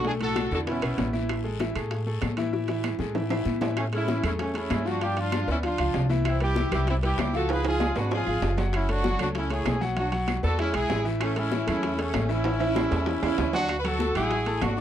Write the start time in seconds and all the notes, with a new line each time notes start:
Already playing: B1
0.05 A2 A3 D4 G#4 A4, high bongo, high conga, long guiro
0.20 A2 A3 F#4 A4, high bongo, high conga, high timbale
0.36 high bongo, high conga, high timbale, low timbale, short guiro, claves
0.51 E2 D3 D4 E4 F#4 A4, high bongo, high conga, short guiro
0.67 B2 B3 C#4 E4 B4, high bongo, high conga, high timbale, long guiro
0.82 B1 B2 B3 B4, high bongo, high conga, high timbale, claves
0.98 A1, high bongo, low bongo, high conga, high timbale, low timbale, short guiro
1.13 E3 E4 E5, high conga, short guiro
1.29 high bongo, high conga, high timbale, long guiro, claves
1.44 G#3 G#4 A4, high bongo, high conga
1.60 E3 E4 E5, high bongo, high conga, high timbale, low timbale, short guiro
1.75 A2 A3 G#4 A4, high bongo, high timbale, short guiro, claves
1.91 high bongo, high conga, high timbale, long guiro
2.06 A3 G#4 A4, high bongo, high conga
2.22 A2, high bongo, low bongo, high conga, high timbale, low timbale, short guiro, claves
2.37 E3 E4 E5, high conga, high timbale, short guiro
2.53 E3 E4 E5, high bongo, high conga, long guiro
2.68 E3 E4 E5, high bongo, high conga, high timbale
2.84 high conga, high timbale, low timbale, short guiro, claves
2.99 A2 G#3 G#4 A4, low bongo, high conga, short guiro
3.15 E3 E4 E5, low bongo, high conga, high timbale, long guiro
3.30 E3 E4 E5, low bongo, high conga, high timbale, claves
3.45 A2, low bongo, high conga, short guiro
3.61 E3 E4 E5, low bongo, high conga, low timbale, short guiro
3.77 A3 C#4, high bongo, high conga, high timbale, long guiro, claves
3.92 G#3 C#4 E4 G#4 A4, high conga, high timbale
4.08 E3 E4 E5, high bongo, high conga, low timbale, short guiro
4.23 E2 A3 C#4 E4 G#4 A4, high bongo, high conga, low conga, high timbale, short guiro, claves
4.39 A3 C#4, high bongo, high conga, high timbale, long guiro
4.54 A3 C#4 E4 G#4 A4, high bongo, high conga, high timbale
4.70 G2, high bongo, low bongo, high conga, high timbale, low timbale, short guiro, claves
4.85 F3 D4 F4 F#4 F5, high bongo, high conga, short guiro
5.01 F3 D4 F4 G4 F5, high bongo, high conga, high timbale, long guiro
5.16 F3 D4 F4 F5, high conga, high timbale
5.32 high bongo, high conga, high timbale, low timbale, short guiro, claves
5.47 D2 B3 C#4 E4 B4 D5, high bongo, high conga, short guiro
5.63 F3 D4 F4 F5, high bongo, high conga, high timbale, long guiro
5.78 C#2 F3 F4 F5, high conga, high timbale, claves
5.94 C2, high bongo, low bongo, high conga, low timbale, short guiro
6.09 E3 E4 E5, high bongo, high conga, short guiro
6.25 C4 E4, high bongo, high timbale, long guiro, claves
6.40 G3 E4 G4 B4, high conga, high timbale
6.56 E3 E4 E5, high bongo, high conga, low timbale, short guiro
6.71 C2 G3 E4 G4 B4, high bongo, high conga, low conga, high timbale, short guiro, claves
6.87 C4 E4, high bongo, high conga, high timbale, long guiro
7.02 G3 E4 G4 B4, high bongo, high conga, high timbale
7.18 C#2, high bongo, low bongo, high conga, high timbale, low timbale, short guiro, claves
7.33 F3 F4 F#4 A4 F5, high bongo, short guiro
7.49 F3 F4 G#4 B4 F5, high bongo, high conga, high timbale, long guiro
7.64 F3 F4 G#4 F5, high conga, high timbale
7.80 high bongo, high conga, low timbale, short guiro, claves
7.95 G#1 G#3 D4 F#4 G#4 B4, high bongo, high conga, low timbale, short guiro
8.11 F3 F4 G#4 F5, high bongo, high conga, low timbale, long guiro
8.26 G#1 F3 F4 F5, high conga, claves
8.42 F#1, high bongo, low bongo, high conga, low timbale, short guiro
8.57 F#3 F#4 F#5, high bongo, low timbale, short guiro
8.73 C#4 E4, high bongo, high conga, high timbale, long guiro, claves
8.89 A3 D4 F#4 A4 C#5, high conga, high timbale
9.04 F#3 F#4 F#5, high bongo, high conga, low timbale, short guiro
9.19 C#2 A3 D4 F#4 A4 C#5, high bongo, high conga, low conga, high timbale, short guiro, claves
9.35 C#4 E4, high bongo, high conga, high timbale, long guiro
9.50 A3 E4 G#4 C#5, high bongo, high conga, high timbale
9.65 B1, high bongo, low bongo, high conga, high timbale, low timbale, short guiro, claves
9.81 F#3 F#4 F#5, high bongo, high conga, short guiro
9.96 F#3 D4 F#4 F#5, high bongo, high conga, high timbale, long guiro
10.12 F#3 F#4 F#5, high conga, high timbale
10.28 high bongo, high conga, high timbale, low timbale, short guiro, claves
10.43 E2 B3 F#4 A4 B4 D5, high bongo, high conga, short guiro
10.58 G#3 C#4 E4 G#4 G#5, high bongo, high conga, high timbale, long guiro
10.73 B1 G#3 E4 G#4 G#5, high conga, high timbale, claves
10.90 A1, high bongo, low bongo, high conga, low timbale, short guiro
11.05 E3 E4 E5, high bongo, short guiro
11.21 A3 C#4, high bongo, high conga, high timbale, long guiro, claves
11.36 G#3 C#4 E4 G#4 A4, high conga, high timbale
11.51 E3 E4 E5, high bongo, high conga, low timbale, short guiro
11.67 E2 A3 C#4 E4 G#4 A4, high bongo, high conga, low conga, high timbale, short guiro, claves
11.83 high bongo, high conga, high timbale, long guiro
11.98 A3 C#4 G#4 A4, high bongo, high conga, high timbale
12.14 A1, high bongo, low bongo, high conga, high timbale, low timbale, short guiro, claves
12.29 E3 C#4 E4 E5, high bongo, high conga, short guiro
12.44 E3 E4 E5, high bongo, high conga, high timbale, long guiro
12.60 E3 E4 E5, high conga, high timbale
12.76 high bongo, high conga, low timbale, short guiro, claves
12.90 E2 G#3 G#4 A4, high bongo, high conga, low timbale, short guiro
13.06 E3 E4 E5, high bongo, high conga, low timbale, long guiro
13.22 E2 E3 C#4 E4 E5, high conga, low timbale, claves
13.38 D2, high bongo, low bongo, high conga, low timbale, short guiro
13.53 F#3 D4 F#4 F#5, high bongo, low timbale, short guiro
13.69 high bongo, high conga, high timbale, long guiro, claves
13.79 B4
13.84 F#3 F#4 A4 F#5, high conga, high timbale
13.99 A3 A4 A5, high bongo, high conga, low timbale, short guiro
14.15 A1 E4 F#4 G#4 F#5 F#6, high bongo, high conga, low conga, high timbale, short guiro, claves
14.31 high bongo, high conga, high timbale, long guiro
14.46 A3 A4 A5, high bongo, high conga, high timbale
14.62 G#1 D4 F#4, high bongo, low bongo, high conga, high timbale, low timbale, short guiro, claves
14.77 D4 D5 D6, high bongo, short guiro